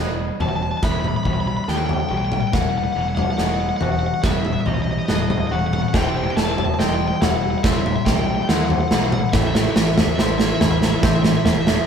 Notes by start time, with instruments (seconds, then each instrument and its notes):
Already playing: picked electric bass E1, distorted electric guitar E3, clean electric guitar E3 G3 B3 B4 D#5
0.00 distorted electric guitar G3
0.40 picked electric bass E1, distorted electric guitar E3 G3, overdriven electric guitar A5, floor tom
0.49 overdriven electric guitar A5
0.56 overdriven electric guitar A5
0.63 overdriven electric guitar A5
0.71 overdriven electric guitar A5
0.77 overdriven electric guitar A5
0.82 picked electric bass E1, distorted electric guitar E3 G3, clean electric guitar B3 E5, overdriven electric guitar B5, kick, snare
0.92 overdriven electric guitar B5
1.00 overdriven electric guitar B5
1.04 overdriven electric guitar B5, mid tom
1.16 overdriven electric guitar B5
1.24 picked electric bass B1, distorted electric guitar E3 G3, clean electric guitar G3, overdriven electric guitar B5, kick, floor tom
1.33 overdriven electric guitar B5
1.40 overdriven electric guitar B5
1.47 overdriven electric guitar B5
1.57 overdriven electric guitar B5
1.64 clean electric guitar A4, overdriven electric guitar B5, snare
1.68 picked electric bass D#2, distorted electric guitar E3 G3, clean electric guitar B3, overdriven electric guitar G5
1.77 overdriven electric guitar G5
1.86 overdriven electric guitar G5, floor tom
1.93 overdriven electric guitar G5
2.00 overdriven electric guitar G5
2.09 picked electric bass B1, distorted electric guitar E3 G3, overdriven electric guitar G5
2.18 overdriven electric guitar G5
2.25 overdriven electric guitar G5
2.32 overdriven electric guitar G5, mid tom
2.41 overdriven electric guitar G5
2.47 overdriven electric guitar G5
2.52 picked electric bass E1, distorted electric guitar E3 G3, clean electric guitar E3 B4, overdriven electric guitar F#5, kick, snare, floor tom
2.61 overdriven electric guitar F#5
2.69 overdriven electric guitar F#5
2.78 overdriven electric guitar F#5
2.84 overdriven electric guitar F#5
2.92 picked electric bass E1, distorted electric guitar E3 G3, overdriven electric guitar F#5
2.97 clean electric guitar G3
3.01 overdriven electric guitar F#5
3.08 overdriven electric guitar F#5
3.15 overdriven electric guitar F#5, floor tom
3.23 overdriven electric guitar F#5
3.31 overdriven electric guitar F#5
3.38 picked electric bass E1, distorted electric guitar E3 G3, clean electric guitar B3 D#5, overdriven electric guitar F#5, snare
3.46 overdriven electric guitar F#5
3.54 overdriven electric guitar F#5
3.60 overdriven electric guitar F#5
3.69 overdriven electric guitar F#5
3.76 overdriven electric guitar F#5
3.81 picked electric bass E1, distorted electric guitar E3 G3, clean electric guitar F#4, overdriven electric guitar F#5, floor tom
3.92 overdriven electric guitar F#5
3.99 overdriven electric guitar F#5
4.07 overdriven electric guitar F#5
4.14 overdriven electric guitar F#5
4.22 picked electric bass E1, distorted electric guitar E3 G3, clean electric guitar B3 E4, overdriven electric guitar E5 F#5, kick, snare
4.31 overdriven electric guitar E5
4.39 overdriven electric guitar E5
4.45 overdriven electric guitar E5, mid tom
4.53 overdriven electric guitar E5
4.61 overdriven electric guitar E5
4.66 picked electric bass B1, distorted electric guitar E3 G3, clean electric guitar G3, overdriven electric guitar D#5, floor tom
4.74 overdriven electric guitar D#5
4.82 overdriven electric guitar D#5
4.91 overdriven electric guitar D#5
4.99 overdriven electric guitar D#5
5.06 picked electric bass E1, distorted electric guitar E3 G3, clean electric guitar B3 A4, overdriven electric guitar D#5, snare, mid tom
5.15 overdriven electric guitar D#5
5.22 overdriven electric guitar D#5
5.30 overdriven electric guitar D#5, floor tom, mid tom
5.40 overdriven electric guitar D#5
5.47 overdriven electric guitar D#5
5.51 picked electric bass E1, distorted electric guitar E3 G3, clean electric guitar F#4, overdriven electric guitar F#5
5.59 overdriven electric guitar F#5
5.67 overdriven electric guitar F#5
5.73 overdriven electric guitar F#5, mid tom
5.82 overdriven electric guitar F#5
5.88 overdriven electric guitar F#5
5.93 picked electric bass E1, distorted electric guitar E3 G3 C4, clean electric guitar E3 C5, overdriven electric guitar G5, kick, snare, floor tom
6.02 overdriven electric guitar G5
6.09 overdriven electric guitar G5
6.17 overdriven electric guitar G5
6.24 overdriven electric guitar G5
6.31 overdriven electric guitar G5
6.36 picked electric bass E1, distorted electric guitar E3 G3, clean electric guitar G3, overdriven electric guitar A5, snare
6.44 overdriven electric guitar A5
6.51 overdriven electric guitar A5
6.58 overdriven electric guitar A5, floor tom
6.65 overdriven electric guitar A5
6.74 overdriven electric guitar A5
6.79 picked electric bass E1, distorted electric guitar E3 G3, clean electric guitar C4 D#5, overdriven electric guitar G5, snare
6.88 overdriven electric guitar G5
6.94 overdriven electric guitar G5
7.01 overdriven electric guitar G5
7.08 overdriven electric guitar G5
7.16 overdriven electric guitar G5
7.21 picked electric bass E1, distorted electric guitar E3 G3, clean electric guitar E4, overdriven electric guitar F#5, snare, floor tom
7.29 overdriven electric guitar F#5
7.36 overdriven electric guitar F#5
7.43 overdriven electric guitar F#5
7.50 overdriven electric guitar F#5
7.58 overdriven electric guitar F#5
7.63 picked electric bass E1, distorted electric guitar E3 G3, clean electric guitar C4 E5, overdriven electric guitar E5, kick, snare
7.71 overdriven electric guitar E5
7.79 overdriven electric guitar E5
7.86 overdriven electric guitar E5, mid tom
7.96 overdriven electric guitar E5
8.05 picked electric bass B1, distorted electric guitar E3 G3, clean electric guitar G3, overdriven electric guitar G5, kick, snare, floor tom
8.12 overdriven electric guitar G5
8.19 overdriven electric guitar G5
8.27 overdriven electric guitar G5
8.35 overdriven electric guitar G5
8.42 overdriven electric guitar G5
8.48 picked electric bass D#2, distorted electric guitar E3 G3, clean electric guitar C4 A4, overdriven electric guitar F#5, snare
8.57 overdriven electric guitar F#5
8.65 overdriven electric guitar F#5
8.70 overdriven electric guitar F#5, floor tom
8.81 overdriven electric guitar F#5
8.88 picked electric bass B1, distorted electric guitar E3 G3, clean electric guitar E4, overdriven electric guitar F#5, snare
8.96 overdriven electric guitar F#5
9.04 overdriven electric guitar F#5
9.12 overdriven electric guitar F#5, mid tom
9.20 overdriven electric guitar F#5
9.29 distorted electric guitar A2 E3, clean electric guitar A4, overdriven electric guitar E5 F#5, snare, floor tom
9.33 picked electric bass A1, clean electric guitar A2, distorted electric guitar A3, kick
9.39 overdriven electric guitar E5
9.47 overdriven electric guitar E5
9.55 overdriven electric guitar E5, snare
9.63 overdriven electric guitar E5
9.71 overdriven electric guitar E5
9.75 picked electric bass A1, distorted electric guitar A2 E3, clean electric guitar G3, overdriven electric guitar E5, snare
9.87 overdriven electric guitar E5
9.94 overdriven electric guitar E5, snare, floor tom
10.01 overdriven electric guitar E5
10.09 overdriven electric guitar E5
10.16 picked electric bass A1, distorted electric guitar A2 E3, clean electric guitar C4 C5, overdriven electric guitar E5, snare
10.24 overdriven electric guitar E5
10.31 overdriven electric guitar E5
10.38 overdriven electric guitar E5, snare
10.46 overdriven electric guitar E5
10.55 overdriven electric guitar E5
10.60 picked electric bass A1, distorted electric guitar A2 E3, clean electric guitar E4, overdriven electric guitar E5, snare, floor tom
10.71 overdriven electric guitar E5
10.77 overdriven electric guitar E5
10.82 overdriven electric guitar E5, snare
10.92 overdriven electric guitar E5
11.00 picked electric bass A1, distorted electric guitar A2 E3, clean electric guitar C4 E5, overdriven electric guitar E5, kick, snare
11.08 overdriven electric guitar E5
11.15 overdriven electric guitar E5
11.23 overdriven electric guitar E5, snare, mid tom
11.30 overdriven electric guitar E5
11.38 overdriven electric guitar E5
11.45 picked electric bass E1, distorted electric guitar A2 E3, clean electric guitar G3, overdriven electric guitar E5, snare, floor tom
11.53 overdriven electric guitar E5
11.61 overdriven electric guitar E5
11.67 overdriven electric guitar E5, snare
11.76 overdriven electric guitar E5